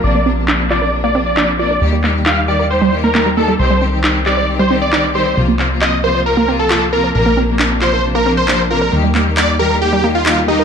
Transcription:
<<
  \new Staff \with { instrumentName = "Supersaw synth" } { \time 4/4 \key bes \major \tempo 4 = 135 d''8 r4 d''8 r16 d''16 r16 d''8 r16 d''8 | r4 f''16 r16 d''16 r16 c''8 r16 bes'8 r16 a'16 r16 | c''8 r4 d''8 r16 c''16 r16 d''8 r16 c''8 | r4 ees''16 r16 c''16 r16 bes'8 r16 a'8 r16 bes'16 r16 |
bes'8 r4 c''8 r16 bes'16 r16 c''8 r16 bes'8 | r4 d''16 r16 bes'16 r16 g'8 r16 f'8 r16 ees'16 r16 | }
  \new Staff \with { instrumentName = "Synth arpeggio sound" } { \time 4/4 \key bes \major r16 bes16 c'16 r16 d'16 r16 f'16 bes'16 r16 bes16 c'16 r16 d'16 r16 f'16 bes'16 | r16 g16 bes16 r16 ees'16 r16 g'16 bes'16 r16 g16 ees'16 bes16 bes16 g16 bes16 g16 | r16 g16 c'16 r16 ees'16 r16 g'16 c''16 r16 g16 c'16 r16 ees'16 r16 g'16 c''16 | r16 bes16 c'16 r16 f'16 r16 bes'16 c''16 r16 bes16 c'16 r16 f'16 r16 bes'16 c''16 |
r16 bes16 c'16 r16 d'16 r16 f'16 bes'16 r16 bes16 c'16 r16 d'16 r16 f'16 bes'16 | r16 g16 bes16 r16 ees'16 r16 g'16 bes'16 r16 g16 bes16 r16 ees'16 r16 g'16 bes'16 | }
  \new Staff \with { instrumentName = "String section" } { \clef bass \time 4/4 \key bes \major <c f bes d'>8 <c f bes d'>16 <c f bes d'>16 <c f bes d'>8 <c f bes d'>16 <c f bes d'>16 <c f bes d'>8 <c f bes d'>8 <c f bes d'>8 <c f bes d'>8 | <ees g bes g'>8 <ees g bes g'>16 <ees g bes g'>16 <ees g bes g'>8 <ees g bes g'>16 <ees g bes g'>16 <ees g bes g'>8 <ees g bes g'>8 <ees g bes g'>8 <ees g bes g'>8 | <ees g c' g'>8 <ees g c' g'>16 <ees g c' g'>16 <ees g c' g'>8 <ees g c' g'>16 <ees g c' g'>16 <ees g c' g'>8 <ees g c' g'>8 <ees g c' g'>8 <ees g c' g'>8 | <c f bes f'>8 <c f bes f'>16 <c f bes f'>16 <c f bes f'>8 <c f bes f'>16 <c f bes f'>16 <c f bes f'>8 <c f bes f'>8 <c f bes f'>8 <c f bes f'>8 |
<c f bes d'>8 <c f bes d'>16 <c f bes d'>16 <c f bes d'>8 <c f bes d'>16 <c f bes d'>16 <c f bes d'>8 <c f bes d'>8 <c f bes d'>8 <c f bes d'>8 | <ees g bes g'>8 <ees g bes g'>16 <ees g bes g'>16 <ees g bes g'>8 <ees g bes g'>16 <ees g bes g'>16 <ees g bes g'>8 <ees g bes g'>8 <ees g bes g'>8 <ees g bes g'>8 | }
  \new Staff \with { instrumentName = "Analog synth bass" } { \clef bass \time 4/4 \key bes \major bes,,1 | ees,1 | c,1 | c,1 |
bes,,1 | ees,1 | }
  \new DrumStaff \with { instrumentName = "Drums" } \drummode { \time 4/4 r4 hc8 hc8 r4 hc4 | r8 hc8 hc4 r4 hc4 | r4 hc8 hc8 r4 hc4 | r8 hc8 hc4 r4 hc4 |
r4 hc8 hc8 r4 hc4 | r8 hc8 hc4 r4 hc4 | }
>>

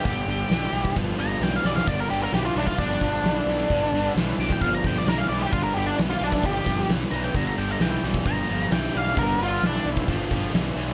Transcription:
<<
  \new Staff \with { instrumentName = "Lead electric guitar" } { \time 4/4 \key g \mixolydian \tempo 4 = 132 g'2 r8 bes''8 g''16 f''16 d''16 f''16 | d''16 bes'16 g'16 bes'16 g'16 f'16 d'16 f'16 d'2~ | d'4 r8 d'''16 g''16 f''16 bes''16 g''16 d''16 bes'16 f''16 d''16 g'16 | f'16 bes'16 g'16 d'16 r16 f'16 d'8 g'4 r8 bes''16 g''16 |
bes''16 bes''16 g''16 bes''16 g''8 r8 bes''4 g''8 f''8 | bes'8 f'8 d'8 r2 r8 | }
  \new Staff \with { instrumentName = "Overdriven electric guitar" } { \clef bass \time 4/4 \key g \mixolydian <g, d>8 <g, d>8 <g, e>8 <g, e>8 <g, f>8 <g, f>8 <g, e>8 <g, e>8 | <g, d>8 <g, d>8 <g, e>8 <g, e>8 <g, f>8 <g, f>8 <g, e>8 <g, e>8 | <g, d>8 <g, d>8 <g, e>8 <g, e>8 <g, f>8 <g, f>8 <g, e>8 <g, e>8 | <g, d>8 <g, d>8 <g, e>8 <g, e>8 <g, f>8 <g, f>8 <g, e>8 <g, e>8 |
<g, d>8 <g, d>8 <g, e>8 <g, e>8 <g, f>8 <g, f>8 <g, e>8 <g, e>8 | <g, d>8 <g, d>8 <g, e>8 <g, e>8 <g, f>8 <g, f>8 <g, e>8 <g, e>8 | }
  \new Staff \with { instrumentName = "Picked electric bass" } { \clef bass \time 4/4 \key g \mixolydian g,,8 g,,8 b,,8 b,,8 g,,8 g,,8 b,,8 b,,8 | g,,8 g,,8 b,,8 b,,8 g,,8 g,,8 b,,8 b,,8 | g,,8 g,,8 b,,8 b,,8 g,,8 g,,8 b,,8 b,,8 | g,,8 g,,8 b,,8 b,,8 g,,8 g,,8 b,,8 b,,8 |
g,,8 g,,8 b,,8 b,,8 g,,8 g,,8 b,,8 b,,8 | g,,8 g,,8 b,,8 b,,8 g,,8 g,,8 b,,8 b,,8 | }
  \new DrumStaff \with { instrumentName = "Drums" } \drummode { \time 4/4 <hho bd>4 <hho sn>8. bd16 <hho bd>4 sn8 sn16 sn16 | <cymc hho bd>4 <hho sn>8. bd16 <hho bd>8 bd8 <hho sn>8. sn16 | <hho bd>4 <hho sn>8. bd16 <hho bd>8 bd8 <hho sn>4 | <hho bd>4 <hho sn>8. bd16 <hho bd>8 bd8 <hho sn>4 |
<hho bd>4 <hho sn>8. bd16 <hho bd>4 <hho sn>8. sn16 | <hho bd>4 <hho sn>8. bd16 <hho bd>8 bd8 <hho sn>4 | }
>>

